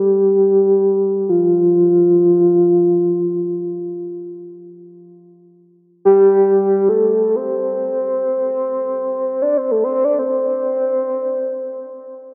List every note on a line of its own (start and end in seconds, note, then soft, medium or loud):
0.00 1.31 G4 medium
1.29 4.58 F4 medium
6.05 6.90 G4 medium
6.89 7.37 A4 medium
7.36 9.43 C5 medium
9.42 9.59 D5 medium
9.57 9.73 C5 medium
9.71 9.85 A4 medium
9.84 9.93 C5 medium
9.93 10.06 C5 medium
10.04 10.18 D5 medium
10.19 12.07 C5 medium